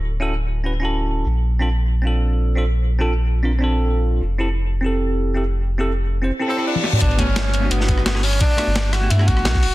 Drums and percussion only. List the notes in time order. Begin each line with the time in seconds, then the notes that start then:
6.75 high tom
6.84 snare
6.93 mid tom
7.01 kick, closed hi-hat, ride
7.11 ride
7.19 kick, closed hi-hat, ride
7.36 snare, closed hi-hat, ride
7.54 closed hi-hat, ride
7.71 closed hi-hat, ride
7.81 snare
7.88 kick, closed hi-hat, ride
7.98 cross-stick
8.06 snare, closed hi-hat, ride
8.15 cross-stick, snare
8.23 open hi-hat
8.33 ride
8.41 kick, closed hi-hat, ride
8.58 cross-stick, closed hi-hat, ride
8.76 snare, closed hi-hat, ride
8.93 cross-stick, snare, closed hi-hat, ride
9.10 closed hi-hat, ride
9.19 cross-stick
9.28 kick, closed hi-hat, ride
9.37 cross-stick
9.45 snare, closed hi-hat, ride
9.54 kick, snare
9.62 open hi-hat, ride